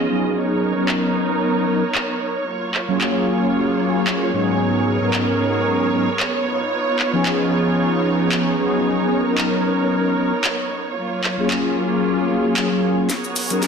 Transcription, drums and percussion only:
0, 0, Header, 1, 2, 480
1, 0, Start_track
1, 0, Tempo, 530973
1, 322, Time_signature, 4, 2, 24, 8
1, 12360, End_track
2, 0, Start_track
2, 0, Title_t, "Drums"
2, 801, Note_on_c, 9, 39, 106
2, 892, Note_off_c, 9, 39, 0
2, 1761, Note_on_c, 9, 39, 105
2, 1852, Note_off_c, 9, 39, 0
2, 2480, Note_on_c, 9, 39, 51
2, 2571, Note_off_c, 9, 39, 0
2, 2722, Note_on_c, 9, 39, 105
2, 2812, Note_off_c, 9, 39, 0
2, 3681, Note_on_c, 9, 39, 99
2, 3772, Note_off_c, 9, 39, 0
2, 4642, Note_on_c, 9, 39, 99
2, 4733, Note_off_c, 9, 39, 0
2, 5602, Note_on_c, 9, 39, 97
2, 5692, Note_off_c, 9, 39, 0
2, 6320, Note_on_c, 9, 39, 52
2, 6411, Note_off_c, 9, 39, 0
2, 6560, Note_on_c, 9, 39, 102
2, 6651, Note_off_c, 9, 39, 0
2, 7520, Note_on_c, 9, 39, 104
2, 7610, Note_off_c, 9, 39, 0
2, 8479, Note_on_c, 9, 39, 106
2, 8569, Note_off_c, 9, 39, 0
2, 9440, Note_on_c, 9, 39, 102
2, 9530, Note_off_c, 9, 39, 0
2, 10161, Note_on_c, 9, 39, 57
2, 10251, Note_off_c, 9, 39, 0
2, 10400, Note_on_c, 9, 39, 106
2, 10490, Note_off_c, 9, 39, 0
2, 11359, Note_on_c, 9, 39, 109
2, 11450, Note_off_c, 9, 39, 0
2, 11839, Note_on_c, 9, 38, 46
2, 11839, Note_on_c, 9, 42, 64
2, 11839, Note_on_c, 9, 69, 47
2, 11929, Note_off_c, 9, 38, 0
2, 11929, Note_off_c, 9, 42, 0
2, 11930, Note_off_c, 9, 69, 0
2, 11970, Note_on_c, 9, 69, 25
2, 12061, Note_off_c, 9, 69, 0
2, 12077, Note_on_c, 9, 69, 79
2, 12078, Note_on_c, 9, 46, 93
2, 12168, Note_off_c, 9, 69, 0
2, 12169, Note_off_c, 9, 46, 0
2, 12207, Note_on_c, 9, 42, 48
2, 12209, Note_on_c, 9, 69, 39
2, 12298, Note_off_c, 9, 42, 0
2, 12299, Note_off_c, 9, 69, 0
2, 12318, Note_on_c, 9, 38, 47
2, 12318, Note_on_c, 9, 42, 64
2, 12321, Note_on_c, 9, 69, 48
2, 12360, Note_off_c, 9, 38, 0
2, 12360, Note_off_c, 9, 42, 0
2, 12360, Note_off_c, 9, 69, 0
2, 12360, End_track
0, 0, End_of_file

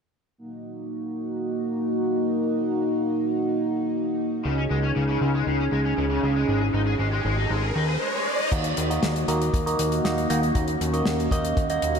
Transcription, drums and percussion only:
0, 0, Header, 1, 2, 480
1, 0, Start_track
1, 0, Key_signature, -6, "minor"
1, 0, Tempo, 508475
1, 363, Time_signature, 4, 2, 24, 8
1, 11324, End_track
2, 0, Start_track
2, 0, Title_t, "Drums"
2, 8041, Note_on_c, 9, 36, 111
2, 8044, Note_on_c, 9, 42, 68
2, 8044, Note_on_c, 9, 49, 94
2, 8135, Note_off_c, 9, 36, 0
2, 8138, Note_off_c, 9, 42, 0
2, 8138, Note_off_c, 9, 49, 0
2, 8157, Note_on_c, 9, 42, 56
2, 8251, Note_off_c, 9, 42, 0
2, 8280, Note_on_c, 9, 42, 102
2, 8375, Note_off_c, 9, 42, 0
2, 8410, Note_on_c, 9, 42, 55
2, 8505, Note_off_c, 9, 42, 0
2, 8521, Note_on_c, 9, 38, 114
2, 8521, Note_on_c, 9, 42, 73
2, 8615, Note_off_c, 9, 38, 0
2, 8616, Note_off_c, 9, 42, 0
2, 8647, Note_on_c, 9, 42, 52
2, 8741, Note_off_c, 9, 42, 0
2, 8764, Note_on_c, 9, 42, 88
2, 8858, Note_off_c, 9, 42, 0
2, 8889, Note_on_c, 9, 42, 53
2, 8983, Note_off_c, 9, 42, 0
2, 9002, Note_on_c, 9, 36, 101
2, 9006, Note_on_c, 9, 42, 70
2, 9096, Note_off_c, 9, 36, 0
2, 9101, Note_off_c, 9, 42, 0
2, 9130, Note_on_c, 9, 42, 54
2, 9224, Note_off_c, 9, 42, 0
2, 9242, Note_on_c, 9, 42, 100
2, 9337, Note_off_c, 9, 42, 0
2, 9364, Note_on_c, 9, 42, 57
2, 9459, Note_off_c, 9, 42, 0
2, 9486, Note_on_c, 9, 38, 103
2, 9487, Note_on_c, 9, 42, 75
2, 9581, Note_off_c, 9, 38, 0
2, 9581, Note_off_c, 9, 42, 0
2, 9609, Note_on_c, 9, 42, 51
2, 9703, Note_off_c, 9, 42, 0
2, 9724, Note_on_c, 9, 42, 99
2, 9818, Note_off_c, 9, 42, 0
2, 9847, Note_on_c, 9, 42, 49
2, 9942, Note_off_c, 9, 42, 0
2, 9960, Note_on_c, 9, 36, 114
2, 9960, Note_on_c, 9, 42, 76
2, 10054, Note_off_c, 9, 36, 0
2, 10055, Note_off_c, 9, 42, 0
2, 10079, Note_on_c, 9, 42, 54
2, 10173, Note_off_c, 9, 42, 0
2, 10206, Note_on_c, 9, 42, 83
2, 10301, Note_off_c, 9, 42, 0
2, 10324, Note_on_c, 9, 42, 53
2, 10419, Note_off_c, 9, 42, 0
2, 10436, Note_on_c, 9, 38, 123
2, 10449, Note_on_c, 9, 42, 74
2, 10530, Note_off_c, 9, 38, 0
2, 10543, Note_off_c, 9, 42, 0
2, 10572, Note_on_c, 9, 42, 58
2, 10666, Note_off_c, 9, 42, 0
2, 10679, Note_on_c, 9, 36, 97
2, 10688, Note_on_c, 9, 42, 92
2, 10773, Note_off_c, 9, 36, 0
2, 10783, Note_off_c, 9, 42, 0
2, 10805, Note_on_c, 9, 42, 56
2, 10900, Note_off_c, 9, 42, 0
2, 10921, Note_on_c, 9, 36, 119
2, 10925, Note_on_c, 9, 42, 72
2, 11016, Note_off_c, 9, 36, 0
2, 11019, Note_off_c, 9, 42, 0
2, 11042, Note_on_c, 9, 42, 58
2, 11136, Note_off_c, 9, 42, 0
2, 11161, Note_on_c, 9, 42, 97
2, 11255, Note_off_c, 9, 42, 0
2, 11280, Note_on_c, 9, 42, 50
2, 11324, Note_off_c, 9, 42, 0
2, 11324, End_track
0, 0, End_of_file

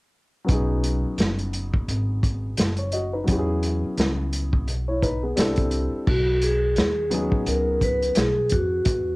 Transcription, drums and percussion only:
0, 0, Header, 1, 2, 480
1, 0, Start_track
1, 0, Key_signature, 5, "major"
1, 0, Tempo, 697674
1, 336, Time_signature, 4, 2, 24, 8
1, 6301, End_track
2, 0, Start_track
2, 0, Title_t, "Drums"
2, 333, Note_on_c, 9, 42, 75
2, 336, Note_on_c, 9, 36, 93
2, 402, Note_off_c, 9, 42, 0
2, 405, Note_off_c, 9, 36, 0
2, 575, Note_on_c, 9, 42, 68
2, 644, Note_off_c, 9, 42, 0
2, 812, Note_on_c, 9, 42, 63
2, 828, Note_on_c, 9, 38, 97
2, 881, Note_off_c, 9, 42, 0
2, 897, Note_off_c, 9, 38, 0
2, 955, Note_on_c, 9, 42, 40
2, 1023, Note_off_c, 9, 42, 0
2, 1055, Note_on_c, 9, 42, 65
2, 1124, Note_off_c, 9, 42, 0
2, 1195, Note_on_c, 9, 36, 77
2, 1264, Note_off_c, 9, 36, 0
2, 1297, Note_on_c, 9, 42, 59
2, 1366, Note_off_c, 9, 42, 0
2, 1536, Note_on_c, 9, 36, 75
2, 1539, Note_on_c, 9, 42, 59
2, 1604, Note_off_c, 9, 36, 0
2, 1608, Note_off_c, 9, 42, 0
2, 1771, Note_on_c, 9, 42, 93
2, 1786, Note_on_c, 9, 38, 100
2, 1840, Note_off_c, 9, 42, 0
2, 1855, Note_off_c, 9, 38, 0
2, 1904, Note_on_c, 9, 42, 41
2, 1973, Note_off_c, 9, 42, 0
2, 2008, Note_on_c, 9, 42, 65
2, 2077, Note_off_c, 9, 42, 0
2, 2254, Note_on_c, 9, 42, 76
2, 2257, Note_on_c, 9, 36, 87
2, 2323, Note_off_c, 9, 42, 0
2, 2326, Note_off_c, 9, 36, 0
2, 2496, Note_on_c, 9, 42, 70
2, 2565, Note_off_c, 9, 42, 0
2, 2734, Note_on_c, 9, 42, 66
2, 2750, Note_on_c, 9, 38, 99
2, 2803, Note_off_c, 9, 42, 0
2, 2819, Note_off_c, 9, 38, 0
2, 2977, Note_on_c, 9, 42, 68
2, 3046, Note_off_c, 9, 42, 0
2, 3116, Note_on_c, 9, 36, 76
2, 3185, Note_off_c, 9, 36, 0
2, 3217, Note_on_c, 9, 42, 61
2, 3286, Note_off_c, 9, 42, 0
2, 3457, Note_on_c, 9, 36, 70
2, 3460, Note_on_c, 9, 42, 60
2, 3525, Note_off_c, 9, 36, 0
2, 3528, Note_off_c, 9, 42, 0
2, 3693, Note_on_c, 9, 42, 97
2, 3708, Note_on_c, 9, 38, 99
2, 3762, Note_off_c, 9, 42, 0
2, 3777, Note_off_c, 9, 38, 0
2, 3824, Note_on_c, 9, 42, 46
2, 3836, Note_on_c, 9, 36, 83
2, 3893, Note_off_c, 9, 42, 0
2, 3905, Note_off_c, 9, 36, 0
2, 3928, Note_on_c, 9, 42, 62
2, 3997, Note_off_c, 9, 42, 0
2, 4176, Note_on_c, 9, 49, 72
2, 4178, Note_on_c, 9, 36, 98
2, 4245, Note_off_c, 9, 49, 0
2, 4246, Note_off_c, 9, 36, 0
2, 4414, Note_on_c, 9, 42, 74
2, 4483, Note_off_c, 9, 42, 0
2, 4650, Note_on_c, 9, 42, 68
2, 4666, Note_on_c, 9, 38, 102
2, 4719, Note_off_c, 9, 42, 0
2, 4735, Note_off_c, 9, 38, 0
2, 4892, Note_on_c, 9, 42, 70
2, 4960, Note_off_c, 9, 42, 0
2, 5034, Note_on_c, 9, 36, 78
2, 5103, Note_off_c, 9, 36, 0
2, 5134, Note_on_c, 9, 42, 63
2, 5203, Note_off_c, 9, 42, 0
2, 5375, Note_on_c, 9, 36, 76
2, 5377, Note_on_c, 9, 42, 62
2, 5444, Note_off_c, 9, 36, 0
2, 5445, Note_off_c, 9, 42, 0
2, 5520, Note_on_c, 9, 42, 46
2, 5589, Note_off_c, 9, 42, 0
2, 5608, Note_on_c, 9, 42, 95
2, 5622, Note_on_c, 9, 38, 95
2, 5676, Note_off_c, 9, 42, 0
2, 5691, Note_off_c, 9, 38, 0
2, 5844, Note_on_c, 9, 42, 68
2, 5863, Note_on_c, 9, 36, 79
2, 5913, Note_off_c, 9, 42, 0
2, 5931, Note_off_c, 9, 36, 0
2, 6089, Note_on_c, 9, 42, 82
2, 6095, Note_on_c, 9, 36, 99
2, 6158, Note_off_c, 9, 42, 0
2, 6164, Note_off_c, 9, 36, 0
2, 6301, End_track
0, 0, End_of_file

